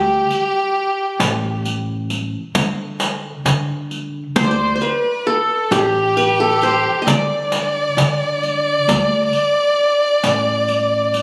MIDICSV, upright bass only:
0, 0, Header, 1, 2, 480
1, 0, Start_track
1, 0, Tempo, 903614
1, 2318, Time_signature, 10, 3, 24, 8
1, 5961, End_track
2, 0, Start_track
2, 0, Title_t, "Upright bass"
2, 0, Program_c, 0, 32
2, 0, Note_on_c, 0, 38, 77
2, 118, Note_off_c, 0, 38, 0
2, 635, Note_on_c, 0, 33, 81
2, 1247, Note_off_c, 0, 33, 0
2, 1353, Note_on_c, 0, 50, 88
2, 1763, Note_off_c, 0, 50, 0
2, 1834, Note_on_c, 0, 50, 77
2, 2243, Note_off_c, 0, 50, 0
2, 2314, Note_on_c, 0, 38, 79
2, 2519, Note_off_c, 0, 38, 0
2, 3033, Note_on_c, 0, 33, 89
2, 3646, Note_off_c, 0, 33, 0
2, 3754, Note_on_c, 0, 50, 91
2, 4163, Note_off_c, 0, 50, 0
2, 4234, Note_on_c, 0, 50, 80
2, 4643, Note_off_c, 0, 50, 0
2, 4715, Note_on_c, 0, 38, 77
2, 4920, Note_off_c, 0, 38, 0
2, 5437, Note_on_c, 0, 33, 84
2, 5961, Note_off_c, 0, 33, 0
2, 5961, End_track
0, 0, End_of_file